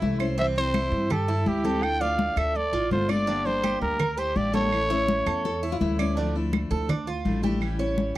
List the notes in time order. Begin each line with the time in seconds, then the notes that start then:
Already playing: E4
0.02 C2 E3 A3 C#4 E4, high conga
0.20 A3 C#4 E4 C5, claves
0.38 C3 E3 G3 C4 E4 E5, high conga
0.56 E3 G3 C4 E4 C5, high conga
0.74 E4, high conga, claves
0.92 G2, high conga
1.10 G4 A4, muted steel-string acoustic guitar stroke, high conga, low conga, claves
1.28 E4, high conga
1.46 D2 E3 G3 C4 E4 G4, high conga
1.64 E3 G3 C4 E4 A4, high conga
1.82 D3 A3 D4 F4 G5, high conga, claves
2.00 A3 D4 F4 D5 F5, high conga
2.19 high conga
2.36 D2 A4 E5, high conga, claves
2.55 D5, muted steel-string acoustic guitar stroke, high conga
2.73 A1 F4, high conga
2.91 G1 D3 A3 D4 F4 C5, high conga
3.09 A3 D4 F4 D5, high conga, claves
3.27 D3 G3 A#3 D4 G4, high conga
3.45 G3 A#3 D4 G4 C5, high conga
3.64 G4, high conga, claves
3.81 D2 A#4, high conga
3.99 A#4, muted steel-string acoustic guitar stroke, high conga, low conga, claves
4.18 G4 C5, high conga
4.35 A1 G3 A#3 D4 G4 D5, high conga
4.53 G3 A#3 D4 G4 A4 C#5, high conga
4.72 E3 A3 C#4 E4, high conga, claves
4.90 A3 C#4 E4 C#5, high conga
5.08 high conga
5.26 E2 A4, high conga, claves
5.45 A4, muted steel-string acoustic guitar stroke, high conga
5.63 E4, high conga
5.72 F4
5.81 D2 E3 A3 C#4 E4, high conga
5.99 A3 C#4 E4 D5, high conga, claves
6.17 D3 F3 A3 D4 E4, high conga
6.35 F3 A3 D4 E4, high conga
6.53 high conga, claves
6.71 D2 A4, high conga
6.89 D4, muted steel-string acoustic guitar stroke, high conga, low conga, claves
7.07 F4, high conga
7.25 A1 F3 A3 D4 E4, high conga
7.43 F3 A3 D4 E4 G4, high conga
7.61 E3 G3 C#4 E4, high conga, claves
7.79 G3 C#4 E4 C#5, high conga
7.98 high conga